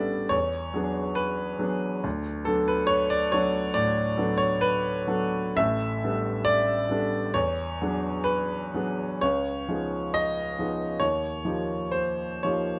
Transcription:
0.00 0.35 A1 medium
0.00 0.36 A2 medium
0.00 0.35 G3 soft
0.00 0.35 B3 soft
0.00 0.36 D4 soft
0.00 0.36 A4 medium
0.00 0.31 D5 loud
0.00 0.35 E5 loud
0.29 0.74 E2 medium
0.29 1.17 C#5 loud
0.74 1.57 F#3 medium
0.74 1.58 B3 medium
0.74 1.58 D4 soft
0.74 1.58 G#4 medium
1.15 2.03 B4 medium
1.59 1.99 F#3 medium
1.59 1.99 B3 soft
1.59 2.00 D4 soft
1.59 1.99 G#4 medium
2.04 2.45 D2 medium
2.45 3.29 F#3 soft
2.45 3.29 B3 soft
2.45 3.29 D4 soft
2.45 2.67 A4 medium
2.68 2.89 B4 medium
2.87 3.10 C#5 loud
3.10 3.32 D5 loud
3.32 3.72 F#3 medium
3.32 3.73 B3 soft
3.32 3.73 D4 soft
3.32 3.73 A4 medium
3.32 3.76 C#5 loud
3.74 4.17 A2 medium
3.74 4.39 D5 loud
4.17 5.03 F#3 medium
4.17 5.04 B3 medium
4.17 5.04 D4 soft
4.17 5.04 A4 medium
4.38 4.60 C#5 loud
4.61 5.57 B4 loud
5.07 5.53 F#3 medium
5.07 5.52 B3 medium
5.07 5.53 D4 medium
5.07 5.53 A4 medium
5.56 6.00 A1 medium
5.56 6.01 A2 medium
5.56 6.46 E5 loud
6.04 6.88 G3 soft
6.04 6.87 B3 soft
6.04 6.87 D4 soft
6.04 6.88 A4 medium
6.45 7.34 D5 loud
6.89 7.31 G3 soft
6.89 7.31 B3 soft
6.89 7.31 D4 medium
6.89 7.32 A4 medium
7.34 7.79 E2 medium
7.34 8.26 C#5 loud
7.82 8.70 F#3 medium
7.82 8.70 B3 soft
7.82 8.70 D4 medium
7.82 8.70 G#4 medium
8.24 9.20 B4 medium
8.74 9.18 F#3 medium
8.74 9.18 B3 medium
8.74 9.18 D4 soft
8.74 9.19 G#4 medium
9.21 9.68 C#2 medium
9.21 10.14 C#5 loud
9.69 10.54 F3 soft
9.69 10.55 B3 soft
9.69 10.55 D#4 soft
9.69 10.55 G#4 soft
10.14 11.02 D#5 loud
10.59 10.98 F3 soft
10.59 10.99 B3 soft
10.59 10.99 D#4 soft
10.59 10.99 G#4 soft
11.00 11.44 D#2 medium
11.00 11.93 C#5 loud
11.45 12.39 F3 soft
11.45 12.40 A#3 soft
11.45 12.40 D#4 soft
11.45 12.40 G4 soft
11.91 12.43 C5 medium
12.43 12.79 F3 soft
12.43 12.79 A#3 soft
12.43 12.79 D#4 soft
12.43 12.79 G4 soft
12.43 12.79 C#5 medium

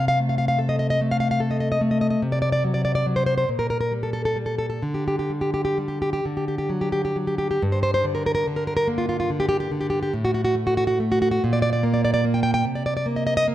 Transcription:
0.00 2.15 C3 medium
0.08 0.18 F5 loud
0.20 1.00 A3 medium
0.29 0.37 F5 medium
0.38 0.47 F5 loud
0.48 0.59 F5 loud
0.59 1.39 A4 medium
0.69 0.78 D#5 medium
0.79 0.89 D#5 loud
0.90 1.00 D#5 loud
1.01 1.80 A3 medium
1.11 1.19 F5 loud
1.20 1.29 F5 loud
1.31 1.40 F5 loud
1.40 2.21 A4 medium
1.51 1.59 D#5 medium
1.60 1.70 D#5 medium
1.72 1.80 D#5 medium
1.81 2.21 A3 medium
1.91 2.00 D#5 medium
2.01 2.09 D#5 medium
2.10 2.20 D#5 medium
2.22 3.46 C3 medium
2.32 2.41 D5 loud
2.42 2.51 D5 medium
2.52 2.62 D5 loud
2.64 3.05 F#3 medium
2.74 2.84 D5 medium
2.85 2.94 D5 medium
2.95 3.05 D5 loud
3.06 3.45 F#3 medium
3.16 3.25 C5 medium
3.26 3.36 C5 medium
3.38 3.48 C5 medium
3.49 4.80 A#2 medium
3.59 3.69 A#4 medium
3.70 3.79 A#4 medium
3.81 3.92 A#4 medium
3.92 4.35 G3 medium
4.03 4.12 A4 medium
4.13 4.24 A4 medium
4.25 4.37 A4 medium
4.36 4.79 G3 medium
4.46 4.57 A4 medium
4.58 4.68 A4 medium
4.70 4.83 A4 medium
4.83 6.19 D3 medium
4.94 5.06 G4 medium
5.08 5.18 G4 medium
5.19 5.31 G4 medium
5.30 5.77 G3 medium
5.41 5.53 G4 medium
5.54 5.64 G4 medium
5.65 5.77 G4 medium
5.78 6.20 G3 soft
5.88 6.00 G4 medium
6.02 6.12 G4 medium
6.13 6.24 G4 medium
6.25 7.58 D3 medium
6.37 6.47 G4 medium
6.48 6.57 G4 medium
6.58 6.70 G4 medium
6.69 7.15 F#3 soft
6.81 6.91 G4 medium
6.92 7.04 G4 medium
7.05 7.16 G4 medium
7.16 7.57 F#3 soft
7.27 7.37 G4 medium
7.38 7.50 G4 medium
7.51 7.62 G4 medium
7.62 10.08 G2 medium
7.72 7.82 C5 medium
7.83 7.93 C5 loud
7.94 8.04 C5 loud
8.04 8.46 D3 medium
8.15 8.25 A#4 medium
8.26 8.34 A#4 loud
8.35 8.46 A#4 medium
8.47 9.29 D3 medium
8.56 8.66 A#4 medium
8.67 8.75 A#4 loud
8.77 8.87 A#4 loud
8.88 10.11 A#3 medium
8.98 9.08 F4 medium
9.09 9.19 F4 medium
9.20 9.29 F4 medium
9.30 9.70 D3 medium
9.40 9.47 G4 medium
9.49 9.59 G4 loud
9.60 9.70 G4 loud
9.71 10.12 D3 medium
9.81 9.89 G4 medium
9.90 10.01 G4 medium
10.03 10.12 G4 loud
10.13 11.39 A2 medium
10.25 10.33 F#4 medium
10.34 10.43 F#4 loud
10.45 10.55 F#4 loud
10.55 10.99 A3 medium
10.67 10.76 F#4 medium
10.77 10.86 F#4 loud
10.87 10.98 F#4 loud
11.00 11.43 A3 medium
11.12 11.21 F#4 medium
11.22 11.30 F#4 loud
11.31 11.42 F#4 loud
11.44 12.62 A#2 medium
11.53 11.61 D5 loud
11.62 11.72 D5 loud
11.73 11.83 D5 loud
11.83 12.23 A#3 medium
11.94 12.03 D5 loud
12.05 12.12 D5 loud
12.14 12.24 D5 loud
12.24 12.65 A#3 medium
12.34 12.42 G5 medium
12.43 12.53 G5 loud
12.54 12.64 G5 loud
12.65 13.55 C3 medium
12.75 12.85 D5 medium
12.86 12.95 D5 medium
12.97 13.06 D5 loud
13.06 13.46 A#3 medium
13.16 13.26 D#5 medium
13.27 13.36 D#5 loud
13.37 13.46 D#5 loud
13.48 13.55 A#3 medium

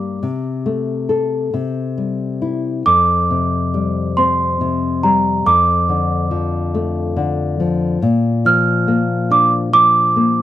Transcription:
0.00 0.18 G2 medium
0.00 0.21 G3 soft
0.00 0.18 A#3 soft
0.00 2.38 D6 medium
0.23 1.50 C3 medium
0.66 1.51 A3 soft
1.09 1.52 A4 soft
1.54 2.82 C3 medium
1.98 2.83 G3 soft
2.42 2.85 E4 soft
2.86 5.42 F2 medium
2.86 4.13 D6 medium
3.30 4.60 C3 soft
3.74 5.03 G3 soft
4.17 5.42 C4 soft
4.17 5.06 C6 medium
4.61 5.43 C3 soft
5.03 5.45 G3 medium
5.03 5.47 A#5 medium
5.46 7.98 F2 medium
5.46 7.56 D6 medium
5.89 7.15 D3 soft
6.31 7.59 F3 soft
6.74 7.98 A3 medium
7.17 7.99 D3 medium
7.60 8.01 F3 medium
8.02 10.42 A#2 medium
8.45 9.72 F3 medium
8.45 9.27 F6 medium
8.88 10.15 A#3 soft
9.30 10.42 D4 medium
9.30 9.50 D6 medium
9.73 10.42 F3 medium
9.73 10.42 D6 loud
10.16 10.42 A#3 soft

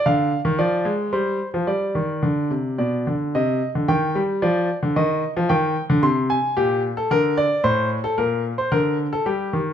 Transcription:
0.06 0.30 D3 medium
0.06 0.39 F5 medium
0.45 0.58 D#3 medium
0.58 0.85 F3 medium
0.58 0.92 D5 medium
0.85 1.12 G#3 medium
1.13 1.38 G3 medium
1.13 1.47 C5 medium
1.54 1.67 F3 medium
1.67 1.95 G3 medium
1.67 2.75 D5 medium
1.95 2.22 D#3 medium
2.23 2.50 D3 medium
2.50 2.78 C3 medium
2.78 3.06 B2 medium
2.78 3.13 D5 medium
3.07 3.34 D3 medium
3.35 3.60 C3 medium
3.35 3.69 D#5 medium
3.75 3.88 D3 medium
3.88 4.15 D#3 medium
3.88 4.22 G5 medium
4.15 4.42 G3 medium
4.42 4.68 F3 medium
4.42 4.76 D5 medium
4.83 4.96 D3 medium
4.96 5.21 D#3 medium
4.96 5.30 D#5 medium
5.37 5.50 F3 medium
5.49 5.75 D#3 medium
5.49 5.83 G5 medium
5.90 6.03 D3 medium
6.03 6.36 C3 medium
6.03 6.29 C6 medium
6.30 6.56 G#5 medium
6.57 6.90 A#2 medium
6.57 6.82 G4 medium
6.97 7.10 A4 medium
7.11 7.44 D3 medium
7.11 7.37 A#4 medium
7.38 7.63 D5 medium
7.64 7.97 A2 medium
7.64 7.89 C5 medium
8.04 8.17 A4 medium
8.18 8.51 A#2 medium
8.18 8.43 A#4 medium
8.58 8.71 C5 medium
8.72 9.05 D3 medium
8.72 8.97 A#4 medium
9.13 9.25 A4 medium
9.26 9.52 G3 medium
9.26 9.60 G4 medium
9.53 9.73 D#3 medium

